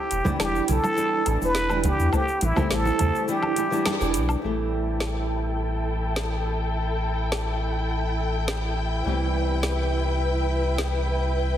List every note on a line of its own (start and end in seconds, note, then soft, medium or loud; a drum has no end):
0.00 0.41 G4 loud
0.11 0.22 E1 medium
0.11 closed hi-hat medium
0.11 shaker medium
0.24 0.65 E3 loud
0.24 0.65 G3 medium
0.24 0.65 B3 medium
0.24 0.65 D4 medium
0.24 0.65 G4 loud
0.24 kick medium
0.24 high conga medium
0.24 low conga medium
0.24 shaker soft
0.40 0.60 E1 medium
0.40 0.68 G4 medium
0.40 snare loud
0.40 muted conga soft
0.40 low woodblock medium
0.40 shaker soft
0.55 shaker soft
0.67 0.79 B1 loud
0.67 0.93 E3 medium
0.67 0.94 G3 medium
0.67 0.94 B3 medium
0.67 0.94 D4 medium
0.67 0.94 G4 medium
0.67 closed hi-hat medium
0.67 high conga medium
0.67 low conga medium
0.67 shaker medium
0.72 1.39 A4 loud
0.84 muted conga medium
0.84 low woodblock medium
0.84 shaker soft
0.96 1.22 E3 medium
0.96 1.22 G3 medium
0.96 1.23 B3 medium
0.96 1.23 D4 medium
0.96 1.23 G4 medium
0.96 shaker soft
1.25 1.37 A1 medium
1.25 1.66 E3 medium
1.25 1.66 G3 medium
1.25 1.66 B3 medium
1.25 1.67 D4 medium
1.25 1.67 E4 medium
1.25 closed hi-hat medium
1.25 low woodblock medium
1.25 shaker medium
1.42 1.92 E1 medium
1.42 1.89 B4 loud
1.42 muted conga soft
1.42 shaker soft
1.55 snare loud
1.55 shaker soft
1.69 2.09 E3 medium
1.69 2.09 G3 medium
1.69 2.09 B3 medium
1.69 2.10 D4 medium
1.69 2.10 G4 loud
1.69 low woodblock medium
1.69 shaker soft
1.84 2.15 G4 loud
1.84 kick loud
1.84 closed hi-hat loud
1.84 muted conga medium
1.84 low conga medium
1.84 shaker medium
1.99 2.09 E2 medium
1.99 shaker soft
2.12 2.23 E3 medium
2.12 2.23 G3 medium
2.12 2.23 A3 medium
2.12 2.24 C4 medium
2.12 2.24 G4 medium
2.12 2.46 G4 loud
2.12 kick loud
2.12 low woodblock medium
2.12 shaker soft
2.28 shaker soft
2.41 2.52 A1 medium
2.41 2.76 E4 medium
2.41 closed hi-hat medium
2.41 muted conga medium
2.41 shaker medium
2.56 2.96 E3 medium
2.56 2.96 G3 medium
2.56 2.96 A3 medium
2.56 2.96 C4 medium
2.56 2.96 G4 loud
2.56 kick loud
2.56 high conga loud
2.56 low conga loud
2.56 low woodblock medium
2.56 shaker soft
2.71 2.91 A1 medium
2.71 3.30 A4 loud
2.71 snare loud
2.71 shaker soft
2.85 muted conga medium
2.85 shaker soft
2.99 3.10 E2 loud
2.99 3.24 E3 medium
2.99 3.25 G3 medium
2.99 3.25 A3 medium
2.99 3.25 C4 medium
2.99 3.26 G4 medium
2.99 kick medium
2.99 closed hi-hat loud
2.99 high conga medium
2.99 low conga medium
2.99 low woodblock medium
2.99 shaker medium
3.15 shaker soft
3.28 3.54 E3 medium
3.28 3.54 G3 medium
3.28 3.54 B3 medium
3.28 3.54 D4 medium
3.28 3.54 G4 medium
3.28 4.12 G4 loud
3.28 shaker soft
3.43 muted conga medium
3.43 low woodblock medium
3.56 3.68 E3 medium
3.56 3.69 G3 medium
3.56 3.69 B3 medium
3.56 3.69 D4 medium
3.56 3.69 E4 medium
3.56 closed hi-hat medium
3.56 shaker medium
3.71 3.97 E3 loud
3.71 3.97 G3 medium
3.71 3.97 B3 medium
3.71 3.98 D4 medium
3.71 3.98 G4 loud
3.71 shaker soft
3.86 snare loud
3.86 muted conga medium
3.86 low woodblock medium
3.86 shaker soft
4.00 4.17 E1 loud
4.00 4.40 E3 medium
4.00 4.40 G3 medium
4.00 4.40 B3 medium
4.00 4.41 D4 medium
4.00 4.41 B4 medium
4.00 shaker soft
4.14 4.35 B1 medium
4.14 closed hi-hat loud
4.14 shaker medium
4.29 low woodblock medium
4.29 shaker soft
4.42 9.02 A1 medium
4.42 9.01 E3 medium
4.42 9.01 G3 medium
4.42 9.02 A3 medium
4.42 9.03 C4 medium
4.42 11.57 E4 medium
4.42 9.00 A4 medium
4.42 11.57 G5 medium
4.46 9.03 G4 medium
5.00 snare medium
6.16 snare medium
7.32 snare medium
8.48 snare medium
9.04 11.57 C2 medium
9.04 11.57 E3 medium
9.04 11.57 G3 medium
9.04 11.57 B3 medium
9.04 11.57 C4 medium
9.04 11.57 G4 medium
9.04 11.57 B4 medium
9.63 snare medium
10.78 snare medium